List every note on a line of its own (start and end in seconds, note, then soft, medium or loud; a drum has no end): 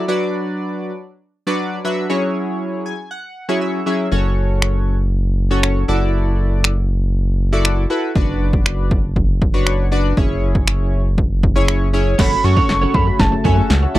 0.08 0.92 F#3 medium
0.08 0.92 D4 medium
0.08 0.92 F#4 medium
0.08 0.92 B4 medium
0.08 0.92 D5 medium
1.47 1.78 F#3 medium
1.47 1.78 D4 medium
1.47 1.78 F#4 medium
1.47 1.78 B4 medium
1.47 1.79 D5 medium
1.84 2.06 F#3 medium
1.84 2.06 D4 medium
1.84 2.06 F#4 medium
1.84 2.06 B4 medium
1.84 2.06 E5 medium
2.09 2.93 F#3 medium
2.09 2.93 C#4 medium
2.09 2.93 E4 medium
2.09 2.94 G#4 medium
2.09 2.94 C#5 medium
2.86 3.09 G#5 medium
3.11 3.58 F#5 medium
3.49 3.80 F#3 medium
3.49 3.80 C#4 medium
3.49 3.80 E4 medium
3.49 3.80 G#4 medium
3.49 3.80 C#5 medium
3.61 3.86 E5 medium
3.86 4.07 F#3 medium
3.86 4.08 C#4 medium
3.86 4.08 E4 medium
3.86 4.08 G#4 medium
3.86 4.08 E5 medium
4.11 5.84 F#1 medium
4.11 4.95 C#4 medium
4.11 4.95 F#4 medium
4.11 4.95 A4 medium
4.11 4.95 C#5 medium
4.62 finger snap loud
5.51 5.82 C#4 medium
5.51 5.82 F#4 medium
5.51 5.82 A4 medium
5.51 5.82 C#5 medium
5.63 finger snap loud
5.88 7.86 F#1 medium
5.88 6.72 E4 medium
5.88 6.72 F#4 medium
5.88 6.72 A4 medium
5.88 6.72 D5 loud
6.64 finger snap loud
7.53 7.84 E4 medium
7.53 7.84 F#4 medium
7.53 7.84 A4 medium
7.53 7.84 D5 loud
7.65 finger snap loud
7.90 8.11 E4 medium
7.90 8.11 F#4 medium
7.90 8.11 A4 medium
7.90 8.11 B4 medium
8.15 10.13 F#1 medium
8.15 8.99 D4 medium
8.15 8.99 F#4 medium
8.15 8.99 B4 medium
8.15 8.99 D5 loud
8.15 kick loud
8.53 kick medium
8.66 finger snap loud
8.91 kick medium
9.16 kick medium
9.42 kick medium
9.54 9.85 D4 medium
9.54 9.85 F#4 medium
9.54 9.85 B4 medium
9.54 9.85 C#5 loud
9.67 finger snap loud
9.92 10.13 D4 medium
9.92 10.13 F#4 medium
9.92 10.13 B4 medium
9.92 10.13 D5 loud
10.17 12.15 F#1 medium
10.17 11.00 C#4 medium
10.17 11.00 E4 medium
10.17 11.01 G#4 medium
10.17 11.01 C#5 medium
10.17 kick loud
10.55 kick medium
10.67 finger snap loud
11.18 kick medium
11.43 kick loud
11.55 11.87 C#4 medium
11.55 11.87 E4 medium
11.55 11.87 G#4 medium
11.55 11.87 C#5 loud
11.68 finger snap loud
11.93 12.14 C#4 medium
11.93 12.14 E4 medium
11.93 12.14 G#4 medium
11.93 12.15 C#5 loud
12.18 12.35 F#1 loud
12.18 13.94 C#3 medium
12.18 12.25 F#3 medium
12.18 13.93 A3 medium
12.18 12.42 C#4 medium
12.18 12.40 C#4 medium
12.18 13.99 F#4 medium
12.18 12.40 F#4 medium
12.18 12.42 F#4 medium
12.18 12.40 A4 medium
12.18 12.43 A4 medium
12.18 12.40 C#5 medium
12.18 12.43 C#5 medium
12.18 12.45 B5 loud
12.18 kick loud
12.18 snare medium
12.18 crash medium
12.31 12.38 A3 medium
12.44 12.60 F#2 loud
12.44 12.50 C#4 medium
12.44 13.27 C#4 medium
12.44 13.27 F#4 medium
12.44 13.28 A4 medium
12.44 13.28 C#5 medium
12.44 12.96 C#6 loud
12.44 muted clean electric guitar stroke soft
12.56 12.68 C#4 medium
12.56 12.63 F#4 medium
12.56 12.68 F#4 medium
12.56 12.68 A4 medium
12.56 12.68 C#5 medium
12.56 kick medium
12.69 12.86 F#1 loud
12.69 12.76 A4 medium
12.69 muted clean electric guitar stroke soft
12.69 snare medium
12.81 12.93 C#4 medium
12.81 12.94 F#4 medium
12.81 12.94 A4 medium
12.81 12.95 C#5 medium
12.81 12.88 C#5 medium
12.94 13.11 F#2 loud
12.94 13.05 C#4 medium
12.94 13.06 F#4 medium
12.94 13.01 A4 medium
12.94 13.06 A4 medium
12.94 13.06 C#5 medium
12.94 13.21 B5 loud
12.94 kick loud
13.07 13.13 F#4 medium
13.07 muted clean electric guitar stroke soft
13.19 13.36 F#1 loud
13.19 13.26 C#4 medium
13.19 13.46 A5 medium
13.19 muted clean electric guitar stroke soft
13.19 kick medium
13.19 snare medium
13.32 13.38 A3 medium
13.32 muted clean electric guitar stroke soft
13.44 13.61 F#2 loud
13.44 13.51 F#3 medium
13.44 13.59 C#4 medium
13.44 13.95 C#4 medium
13.44 13.94 F#4 medium
13.44 13.57 F#4 medium
13.44 13.94 A4 medium
13.44 13.57 A4 medium
13.44 13.56 C#5 medium
13.44 13.95 E5 medium
13.44 13.70 G#5 medium
13.44 kick medium
13.57 13.64 A3 medium
13.57 muted clean electric guitar stroke soft
13.70 13.86 C#2 medium
13.70 13.76 C#4 medium
13.70 muted clean electric guitar stroke soft
13.70 snare medium
13.82 13.89 F#4 medium
13.82 muted clean electric guitar stroke soft
13.95 13.99 F#1 loud
13.95 13.99 E3 medium
13.95 13.99 A3 medium
13.95 13.99 D4 medium
13.95 13.99 E4 medium
13.95 13.99 F#4 medium
13.95 13.99 A4 medium
13.95 13.99 D5 loud